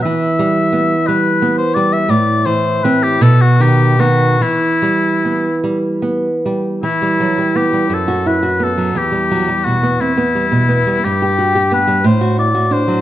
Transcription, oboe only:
X:1
M:6/8
L:1/16
Q:3/8=57
K:Em
V:1 name="Oboe"
e6 B3 c d e | d2 c2 B G A F G2 F2 | E6 z6 | E4 G2 A2 B2 A2 |
G4 F2 E6 | G4 B2 c2 d2 c2 |]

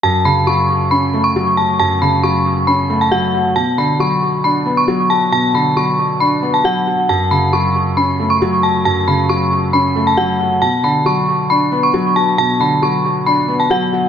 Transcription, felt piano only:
X:1
M:4/4
L:1/8
Q:1/4=136
K:F#m
V:1 name="Felt piano" clef=bass
F,, C, F,2 C A, F,2 | F,, C, F,2 C A, F,2 | B,, D, F,2 D B, F,2 | B,, D, F,2 D B, F,2 |
F,, C, F,2 C A, F,2 | F,, C, F,2 C A, F,2 | B,, D, F,2 D B, F,2 | B,, D, F,2 D B, F,2 |]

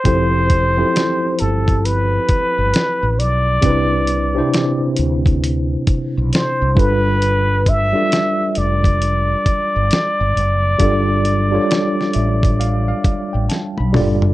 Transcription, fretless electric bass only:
X:1
M:4/4
L:1/16
Q:"Swing 16ths" 1/4=67
K:Gmix
V:1 name="Fretless electric bass" clef=bass
F,,,4 z2 G,,,4 z G,,, z A,,, B,,,2 | C,,4 z2 D,,4 z B,,, z C,, G,,,2- | G,,,4 z2 F,,,4 z G,,, z G,,, ^F,,,2 | G,,,4 z2 A,,,4 z A,,, z B,,, ^F,,,2 |]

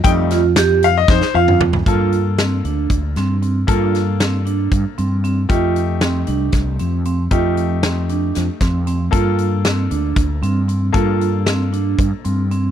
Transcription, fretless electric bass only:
X:1
M:7/8
L:1/16
Q:1/4=116
K:Gm
V:1 name="Fretless electric bass" clef=bass
F,,8 F,, z F,,4 | G,,6 D,,2 D,,2 G,,4 | G,,8 G,, z G,,4 | F,,6 C,,2 C,,2 F,,4 |
F,,8 F,, z F,,4 | G,,6 D,,2 D,,2 G,,4 | G,,8 G,, z G,,4 |]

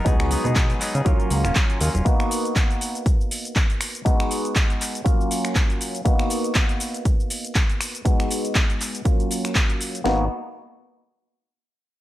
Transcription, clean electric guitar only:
X:1
M:4/4
L:1/16
Q:"Swing 16ths" 1/4=120
K:G#dor
V:1 name="Clean electric guitar"
[F,B,DG]2 [F,B,DG] [B,DG] [F,B,DG]2 [F,B,DG] [B,DG] [F,A,CE] [A,CE]2 [A,CE] [F,A,CE]2 [F,A,CE] [A,CE] | z16 | z16 | z16 |
z16 | z16 |]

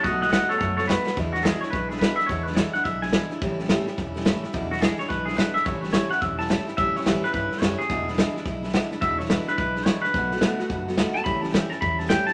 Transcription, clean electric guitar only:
X:1
M:4/4
L:1/8
Q:"Swing" 1/4=214
K:Emix
V:1 name="Clean electric guitar"
[^df] [df] [df] [Ac] [Ac] [Ac] B2 | z F G c B G B e | c B c f e g2 z | z8 |
z F G c B G B e | c B c f e a2 z | e c B B B2 c G- | G4- G z3 |
e c B B B2 c B- | B4- B z2 a | b a =g a b a g a |]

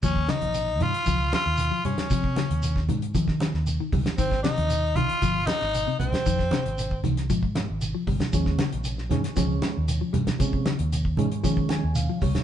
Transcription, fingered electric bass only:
X:1
M:4/4
L:1/16
Q:1/4=116
K:Ebmix
V:1 name="Fingered electric bass" clef=bass
E,,2 z B,,,3 G,, z D,,2 z E,,2 z G,, z | C,2 z E,,3 A,,2 E,3 E,,2 z D,, z | A,,,2 z E,,3 C,, z G,,,2 z A,,,2 z C,, z | F,,2 z A,,,3 C,,2 A,,3 A,,,2 z G,,, z |
E,,2 z B,,,3 G,, z D,,2 z E,,2 z G,, z | C,2 z E,,3 A,,2 E,3 E,,2 z D,, z |]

